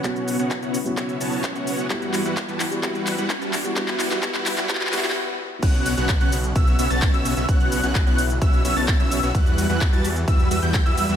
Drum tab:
CC |--------------------------------|--------------------------------|--------------------------------|x-------------------------------|
RD |--------------------------------|--------------------------------|--------------------------------|x---x---x---x---x---x---x---x---|
HH |x-x-o-x-x-x-o-x-x-x-o-o-x-x-o-x-|x-x-o-x-x-x-o-x-x-x-o-x-x-x-o-x-|x-x-o-x-x-x-o-x-x-x-o-o---------|x-x-o-x-x-x-o-x-x-x-o-x-x-x-o-x-|
SH |x-x-x-x-x-x-x-x-x-x-x-x-x-x-x-x-|x-x-x-x-x-x-x-x-x-x-x-x-x-x-x-x-|x-x-x-x-x-x-x-x-x-x-x-x---------|x-x-x-x-x-x-x-x-x-x-x-x-x-x-x-x-|
CP |x-------x-------x-------x-------|x---x---x---x---x---x---x---x---|x-x-x-x-x-x-x-x-xxxxxxxx--------|--------x---------------x-------|
BD |o-------o-------o-------o-------|o-------o-------o-------o-------|o-------o-------o---------------|o-------o-------o-------o-------|

CC |--------------------------------|--------------------------------|
RD |x---x---x---x---x---x---x---x---|x---x---x---x---x---x---x---x---|
HH |x-x-o-x-x-x-o-x-x-x-o-o-x-x-o-x-|x-x-o-x-x-x-o-x-x-x-o-x-x-x-o-x-|
SH |x-x-x-x-x-x-x-x-x-x-x-x-x-x-x-x-|x-x-x-x-x-x-x-x-x-x-x-x-x-x-x-x-|
CP |--------x---------------x-------|--------x---------------x-------|
BD |o-------o-------o-------o-------|o-------o-------o-------o-------|